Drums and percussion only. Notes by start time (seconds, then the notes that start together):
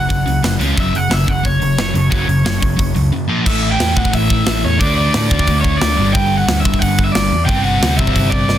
0.10 kick, open hi-hat
0.28 open hi-hat
0.44 snare, open hi-hat
0.61 open hi-hat
0.77 kick, open hi-hat
0.95 open hi-hat
1.11 snare, open hi-hat
1.28 kick, open hi-hat
1.45 kick, open hi-hat
1.62 open hi-hat
1.78 snare, open hi-hat
1.95 open hi-hat
2.12 kick, open hi-hat
2.29 open hi-hat
2.46 snare, open hi-hat
2.62 kick, open hi-hat
2.79 kick, open hi-hat
2.96 open hi-hat
3.46 kick, crash
3.80 snare, open hi-hat
3.97 kick
4.05 kick
4.13 kick, open hi-hat
4.30 kick
4.47 snare, open hi-hat
4.81 kick, open hi-hat
5.14 snare, open hi-hat
5.31 kick
5.39 kick
5.47 kick, open hi-hat
5.64 kick
5.82 snare, open hi-hat
6.15 kick
6.49 snare, open hi-hat
6.65 kick
6.74 kick
6.82 kick, open hi-hat
6.99 kick
7.15 snare, open hi-hat
7.49 kick
7.83 snare, open hi-hat
7.99 kick
8.07 kick
8.16 kick, open hi-hat
8.32 kick
8.49 snare